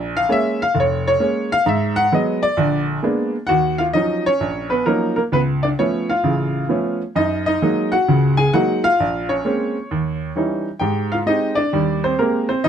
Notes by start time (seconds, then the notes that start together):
Already playing: A#1
0.17 F5
0.29 G#3 A#3 C#4 E5
0.62 F5
0.75 F1
0.80 C#5
1.07 C#5
1.20 G#3 A#3 C#4
1.52 F5
1.66 G#2 E5
1.96 F#5
2.12 F#3 G#3 B3 D#5
2.43 D5
2.57 A#1 D3
3.03 G#3 A#3 B3 D4
3.47 D#2 F#4 F#5
3.78 F4 F5
3.93 F3 F#3 C#4 D#4 D#5
4.26 C#4 C#5
4.40 A#1
4.70 B3 B4
4.86 F3 F#3 A#3 C#4 D#4 A#4
5.16 A#3 A#4
5.32 C#2 B3 B4
5.63 D4 D5
5.79 F3 A3 B3 C#4 C#5
6.10 F4 F5
6.24 A1 C#3
6.69 F3 A3 B3 C#4
7.16 F#2 D#4 D#5
7.46 D#4 D#5
7.62 F#3 G#3 A#3 D#4
7.92 F#4 F#5
8.08 C#2 C#3
8.37 G#4 G#5
8.53 F#3 G#3 A#3 D#4 F#4 F#5
8.84 F4 F5
9.00 A#1
9.29 C#4 C#5
9.45 G#3 A#3 C4 C#4
9.91 D#2
10.36 E3 G3 C#4 D#4
10.79 G#2 G4 G5
11.12 F4 F5
11.26 G#3 C4 D#4 G4 D#5
11.55 D4 D5
11.73 D#2 G3
12.04 C4 C5
12.19 G#3 A#3 C4 G4 A#4
12.49 C4 C5
12.64 F2 D#4 D#5